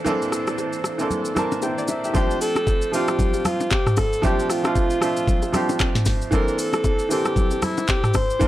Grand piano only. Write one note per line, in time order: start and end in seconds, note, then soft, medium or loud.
0.00 0.04 E3 medium
0.00 0.05 A#3 medium
0.00 0.06 C4 medium
0.00 0.07 D4 medium
0.00 1.63 C5 medium
0.04 0.79 E3 loud
0.04 0.80 A#3 loud
0.04 0.80 C4 loud
0.04 0.80 D4 loud
0.04 0.81 A4 loud
0.98 1.29 E3 medium
0.98 1.30 A#3 medium
0.98 1.30 C4 medium
0.98 1.31 D4 medium
0.98 1.31 A4 medium
1.35 2.00 E3 medium
1.35 2.00 A#3 medium
1.35 2.01 C4 medium
1.35 2.01 D4 medium
1.35 1.64 A#4 loud
1.35 1.61 A5 medium
1.63 1.77 E4 medium
1.63 1.77 C5 medium
1.63 1.87 G5 medium
1.78 2.03 D5 medium
1.89 2.03 E5 medium
2.04 2.16 G4 medium
2.04 2.29 E5 medium
2.13 2.78 F3 medium
2.13 2.79 A3 medium
2.13 2.79 C4 medium
2.13 2.80 D4 medium
2.13 2.80 G4 loud
2.92 3.77 F3 medium
2.92 3.77 A3 medium
2.92 3.78 C4 medium
2.92 3.78 D4 medium
2.92 3.78 F4 medium
4.22 4.55 F3 loud
4.22 4.55 A3 medium
4.22 4.56 C4 medium
4.22 4.56 D4 medium
4.22 4.57 G4 loud
4.63 4.94 F3 medium
4.63 4.95 A3 medium
4.63 4.95 C4 medium
4.63 4.96 D4 medium
4.63 4.96 F4 medium
5.00 5.44 F3 medium
5.00 5.45 A3 medium
5.00 5.45 C4 medium
5.00 5.46 D4 medium
5.00 5.46 E5 medium
5.52 6.17 F3 medium
5.52 6.18 A3 medium
5.52 6.18 C4 medium
5.52 6.19 D4 medium
5.52 6.19 G4 medium
6.31 6.96 E3 medium
6.31 6.96 A#3 medium
6.31 6.97 C4 medium
6.31 6.97 D4 medium
6.31 6.97 A4 loud
7.09 7.94 E3 medium
7.09 7.94 A#3 medium
7.09 7.95 C4 medium
7.09 7.95 D4 medium
7.09 7.96 A4 medium
8.39 8.48 E3 loud
8.39 8.48 A#3 medium
8.39 8.48 C4 medium
8.39 8.48 D4 medium
8.39 8.48 A#4 loud